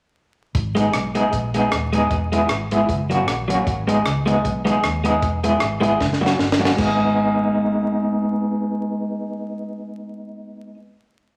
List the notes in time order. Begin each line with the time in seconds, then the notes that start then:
0.55 G#1, kick, closed hi-hat
0.75 G#3 B3 D#4 G#4, closed hi-hat
0.93 B1, cross-stick, closed hi-hat
1.15 G#3 B3 D#4 G#4, closed hi-hat
1.33 A#1, kick, closed hi-hat
1.54 G#3 B3 D#4 G#4, closed hi-hat
1.72 D#1, cross-stick, closed hi-hat
1.93 G#3 B3 D#4 G#4, closed hi-hat
2.11 E1, kick, closed hi-hat
2.32 G#3 B3 E4 G#4, closed hi-hat
2.49 G#1, muted clean electric guitar stroke, cross-stick, closed hi-hat
2.71 G#3 B3 E4 G#4, closed hi-hat
2.89 F#1, kick, closed hi-hat
3.10 F#3 A#3 C#4 F#4, closed hi-hat
3.27 A#1, cross-stick, closed hi-hat
3.48 F#3 A#3 C#4 F#4, closed hi-hat
3.67 G#1, kick, closed hi-hat
3.87 G#3 B3 D#4 G#4, closed hi-hat
4.05 C#2, cross-stick, closed hi-hat
4.26 G#3 B3 D#4 G#4, closed hi-hat
4.45 B1, kick, closed hi-hat
4.65 G#3 B3 D#4 G#4, cross-stick, closed hi-hat
4.83 D#2, cross-stick, closed hi-hat
5.04 G#3 B3 D#4 G#4, closed hi-hat
5.22 E1, kick, closed hi-hat
5.44 G#3 B3 E4 G#4, closed hi-hat
5.60 G#1, muted clean electric guitar stroke, cross-stick, closed hi-hat
5.80 G#3 B3 E4 G#4, closed hi-hat
6.00 F#1, kick, snare
6.13 snare
6.21 F#3 A#3 C#4 F#4
6.26 snare
6.39 G1, snare
6.52 snare
6.59 F#3 A#3 C#4 F#4
6.65 snare
6.76 G#1 G#3 B3 D#4, kick, crash
6.81 G#4